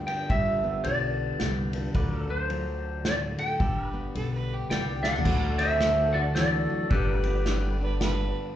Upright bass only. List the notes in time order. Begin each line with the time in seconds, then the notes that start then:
0.30 G1
0.85 B1
1.40 C2
1.94 D2
3.60 G1
4.15 B1
4.70 C2
5.26 D2
6.91 G1